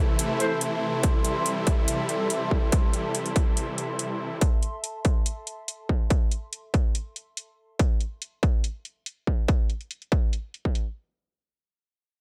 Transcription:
Already playing: supersaw synth C3 E3 A3 E4, ambient pad A4 E5 A5 C6
0.19 closed hi-hat
0.40 brass ensemble A3 E4 C5, closed hi-hat
0.61 closed hi-hat
1.03 kick, closed hi-hat
1.25 closed hi-hat
1.46 closed hi-hat
1.67 kick, closed hi-hat
1.88 closed hi-hat
2.09 closed hi-hat
2.30 closed hi-hat
2.51 kick
2.72 kick, closed hi-hat
2.93 closed hi-hat
3.15 closed hi-hat
3.26 closed hi-hat
3.36 kick, closed hi-hat
3.57 closed hi-hat
3.78 closed hi-hat
3.99 closed hi-hat
4.41 kick, closed hi-hat
4.63 closed hi-hat
4.84 closed hi-hat
5.05 kick, closed hi-hat
5.26 closed hi-hat
5.47 closed hi-hat
5.68 closed hi-hat
5.89 kick
6.10 kick, closed hi-hat
6.31 closed hi-hat
6.53 closed hi-hat
6.74 kick, closed hi-hat
6.95 closed hi-hat
7.16 closed hi-hat
7.37 closed hi-hat
7.79 kick, closed hi-hat
8.01 closed hi-hat
8.22 closed hi-hat
8.43 kick, closed hi-hat
8.64 closed hi-hat
8.85 closed hi-hat
9.06 closed hi-hat
9.27 kick
9.48 kick, closed hi-hat
9.70 closed hi-hat
9.81 closed hi-hat
9.91 closed hi-hat
10.02 closed hi-hat
10.12 kick, closed hi-hat
10.33 closed hi-hat
10.54 closed hi-hat
10.65 kick
10.75 closed hi-hat

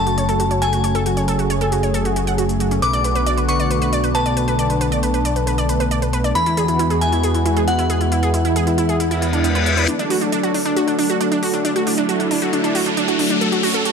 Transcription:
Already playing: analog synth bass F#1, analog synth pad C#3 F#3 A3 F#4, synth bell A5
0.07 synth pluck F#4, closed hi-hat
0.18 synth pluck C#5, closed hi-hat
0.29 synth pluck A4, closed hi-hat
0.40 synth pluck F#4, closed hi-hat
0.51 synth pluck C#5, closed hi-hat
0.62 synth pluck A4, synth bell G#5, closed hi-hat
0.73 synth pluck F#4, closed hi-hat
0.84 synth pluck C#5, closed hi-hat
0.95 synth pluck A4, closed hi-hat
1.06 synth pluck F#4, analog synth pad G#4, closed hi-hat
1.17 synth pluck C#5, closed hi-hat
1.28 synth pluck A4, closed hi-hat
1.39 synth pluck F#4, closed hi-hat
1.50 synth pluck C#5, closed hi-hat
1.61 synth pluck A4, closed hi-hat
1.72 synth pluck F#4, closed hi-hat
1.83 synth pluck C#5, closed hi-hat
1.94 synth pluck A4, closed hi-hat
2.05 synth pluck F#4, closed hi-hat
2.16 synth pluck F#4, closed hi-hat
2.27 synth pluck F#5, closed hi-hat
2.38 synth pluck F#4, closed hi-hat
2.49 closed hi-hat
2.60 synth pluck F#4, closed hi-hat
2.71 synth pluck C#4, closed hi-hat
2.82 analog synth bass B1, analog synth pad D3 B3 F#4, synth pluck B4, synth bell D6, closed hi-hat
2.93 synth pluck D5, closed hi-hat
3.04 synth pluck B4, closed hi-hat
3.15 synth pluck B4, closed hi-hat
3.26 synth pluck D5, closed hi-hat
3.38 synth pluck B4, closed hi-hat
3.49 synth pluck B4, synth bell C#6, closed hi-hat
3.60 synth pluck D5, closed hi-hat
3.71 synth pluck B4, closed hi-hat
3.82 synth pluck B4, closed hi-hat
3.93 synth pluck D5, closed hi-hat
4.04 synth pluck B4, closed hi-hat
4.15 synth pluck B4, synth bell A5, closed hi-hat
4.26 synth pluck D5, closed hi-hat
4.37 synth pluck B4, closed hi-hat
4.48 synth pluck B4, closed hi-hat
4.59 synth pluck D5, closed hi-hat
4.70 synth pluck B4, closed hi-hat
4.81 synth pluck B4, closed hi-hat
4.92 synth pluck D5, closed hi-hat
5.03 synth pluck B4, closed hi-hat
5.14 synth pluck B4, closed hi-hat
5.25 synth pluck D5, closed hi-hat
5.36 synth pluck B4, closed hi-hat
5.47 synth pluck B4, closed hi-hat
5.58 synth pluck D5, closed hi-hat
5.69 synth pluck B4, closed hi-hat
5.80 synth pluck B4, closed hi-hat
5.91 synth pluck D5, closed hi-hat
6.02 synth pluck B4, closed hi-hat
6.13 synth pluck B4, closed hi-hat
6.24 synth pluck D5, closed hi-hat
6.35 analog synth bass E2, analog synth pad E3 G#3 B3 F#4, synth pluck E4, synth bell B5, closed hi-hat
6.46 synth pluck E4, closed hi-hat
6.57 synth pluck G#4, closed hi-hat
6.68 synth pluck E4, closed hi-hat
6.79 synth pluck E4, closed hi-hat
6.90 synth pluck G#4, closed hi-hat
7.01 synth pluck E4, synth bell G#5, closed hi-hat
7.12 synth pluck E4, closed hi-hat
7.23 synth pluck G#4, closed hi-hat
7.34 synth pluck E4, closed hi-hat
7.46 synth pluck E4, closed hi-hat
7.57 synth pluck G#4, closed hi-hat
7.68 synth pluck E4, synth bell F#5, closed hi-hat
7.79 synth pluck E4, closed hi-hat
7.90 synth pluck G#4, closed hi-hat
8.01 synth pluck E4, closed hi-hat
8.12 synth pluck E4, analog synth pad E4, closed hi-hat
8.23 synth pluck G#4, closed hi-hat
8.34 synth pluck E4, closed hi-hat
8.45 synth pluck E4, closed hi-hat
8.56 synth pluck G#4, closed hi-hat
8.67 synth pluck E4, closed hi-hat
8.78 synth pluck E4, closed hi-hat
8.89 synth pluck G#4, closed hi-hat
9.00 synth pluck E4, closed hi-hat, reverse cymbal
9.11 synth pluck E4, closed hi-hat
9.22 synth pluck E4, closed hi-hat
9.33 synth pluck D4, closed hi-hat
9.44 synth pluck B3, closed hi-hat
9.55 synth pluck B4, closed hi-hat
9.66 synth pluck E5, closed hi-hat
9.77 synth pluck B4, closed hi-hat
9.88 analog synth pad F#3 A3 D4 A4, synth pluck D4, closed hi-hat, riser
9.99 synth pluck D4, closed hi-hat
10.10 synth pluck F#4, open hi-hat
10.21 synth pluck D4, closed hi-hat
10.32 synth pluck D4, closed hi-hat
10.43 synth pluck F#4, closed hi-hat
10.54 synth pluck D4, open hi-hat
10.65 synth pluck D4, closed hi-hat
10.77 synth pluck F#4, closed hi-hat
10.88 synth pluck D4, closed hi-hat
10.99 synth pluck D4, open hi-hat
11.10 synth pluck F#4, closed hi-hat
11.21 synth pluck D4, closed hi-hat
11.32 synth pluck D4, closed hi-hat
11.43 synth pluck F#4, open hi-hat
11.54 synth pluck D4, closed hi-hat
11.65 synth pluck D4, analog synth pad E4, closed hi-hat
11.76 synth pluck F#4, closed hi-hat
11.87 synth pluck D4, open hi-hat
11.98 synth pluck D4, closed hi-hat
12.09 synth pluck F#4, closed hi-hat
12.20 synth pluck D4, closed hi-hat
12.31 synth pluck D4, open hi-hat
12.42 synth pluck F#4, closed hi-hat
12.53 synth pluck D4, closed hi-hat
12.64 synth pluck D4, closed hi-hat
12.75 synth pluck F#4, open hi-hat
12.86 synth pluck D4, closed hi-hat
12.97 synth pluck D4, closed hi-hat
13.08 synth pluck F#4, closed hi-hat
13.19 synth pluck D4, open hi-hat
13.30 synth pluck D4, closed hi-hat
13.41 analog synth pad C#4 A4, synth pluck A4, closed hi-hat
13.52 synth pluck F#4, closed hi-hat
13.63 synth pluck F#4, open hi-hat
13.74 synth pluck A4, closed hi-hat
13.85 synth pluck F#4, closed hi-hat

